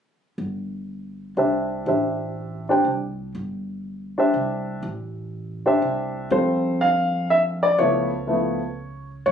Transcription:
0.38 1.33 G1 medium
1.37 1.83 C2 medium
1.37 1.85 D4 soft
1.37 1.86 G4 soft
1.37 1.86 C5 soft
1.37 1.87 E5 soft
1.86 2.82 A1 medium
1.86 2.63 D4 soft
1.86 2.63 G4 soft
1.86 2.64 C5 soft
1.86 2.64 E5 soft
2.69 2.84 D4 medium
2.69 2.84 G4 soft
2.69 2.85 C5 soft
2.69 2.85 G5 medium
2.85 3.31 C2 medium
3.35 4.30 G1 medium
4.18 4.80 D4 soft
4.18 4.80 G4 soft
4.18 4.81 C5 soft
4.18 4.81 E5 medium
4.34 4.80 C2 medium
4.83 5.78 A1 medium
5.66 6.28 D4 medium
5.66 6.28 G4 soft
5.66 6.29 C5 soft
5.66 6.29 E5 medium
5.82 6.28 C2 medium
6.30 7.75 F2 medium
6.30 7.69 G3 soft
6.30 7.70 C4 soft
6.30 7.70 F4 soft
6.30 7.70 A4 soft
6.30 6.82 C5 medium
6.81 7.27 F5 medium
7.30 7.38 E5 medium
7.63 7.78 D5 medium
7.78 9.22 C#2 medium
7.78 8.09 F3 medium
7.78 8.09 A3 soft
7.78 8.10 B3 medium
7.78 8.10 E4 medium
7.78 9.07 C#5 medium
8.27 8.58 F3 medium
8.27 8.58 A3 soft
8.27 8.58 B3 soft
8.27 8.59 E4 medium
9.26 9.32 F#2 medium
9.26 9.32 C#5 medium

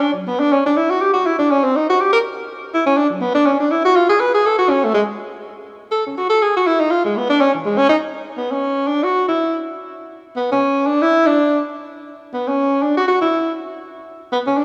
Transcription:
0.01 0.13 D4 medium
0.13 0.28 F#3 soft
0.27 0.41 B3 medium
0.39 0.54 D4 loud
0.52 0.64 C#4 medium
0.66 0.78 D4 medium
0.77 0.91 E4 medium
0.90 1.01 F#4 loud
1.00 1.12 G4 medium
1.13 1.27 F#4 medium
1.26 1.38 E4 medium
1.38 1.52 D4 medium
1.51 1.65 C#4 medium
1.64 1.78 C4 medium
1.76 1.88 D#4 medium
1.89 2.01 F#4 loud
2.00 2.12 G4 medium
2.12 2.18 A#4 loud
2.74 2.85 E4 medium
2.86 2.98 C#4 medium
2.97 3.09 D4 loud
3.10 3.22 F#3 medium
3.20 3.34 B3 medium
3.34 3.47 D4 loud
3.46 3.59 C#4 medium
3.60 3.72 D4 medium
3.71 3.84 E4 medium
3.85 3.97 F#4 loud
3.96 4.08 F4 loud
4.09 4.21 G#4 loud
4.20 4.33 B4 medium
4.34 4.47 G#4 loud
4.46 4.58 A4 medium
4.58 4.71 F#4 loud
4.70 4.86 C#4 medium
4.84 4.92 A3 medium
4.94 5.02 G#3 medium
5.92 6.04 A4 medium
6.07 6.19 C#4 medium
6.17 6.29 F#4 medium
6.30 6.43 A4 loud
6.42 6.55 G#4 loud
6.57 6.68 F#4 medium
6.67 6.81 E4 medium
6.80 6.92 D#4 loud
6.90 7.04 F4 loud
7.05 7.18 G#3 medium
7.17 7.29 B3 medium
7.29 7.42 D4 loud
7.40 7.53 C#4 loud
7.54 7.66 E3 medium
7.65 7.79 G#3 medium
7.78 7.87 C#4 loud
7.89 7.97 D#4 medium
8.37 8.53 B3 medium
8.51 8.89 C#4 medium
8.87 9.05 D4 medium
9.03 9.26 F#4 loud
9.28 9.59 E4 medium
10.36 10.48 B3 medium
10.52 10.88 C#4 medium
10.86 11.03 D4 medium
11.02 11.28 E4 loud
11.26 11.59 D4 medium
12.33 12.50 B3 medium
12.48 12.83 C#4 medium
12.82 12.96 D4 medium
12.97 13.06 F#4 loud
13.08 13.20 F#4 medium
13.21 13.53 E4 medium
14.32 14.38 B3 medium
14.47 14.58 C#4 medium
14.57 14.65 D4 medium

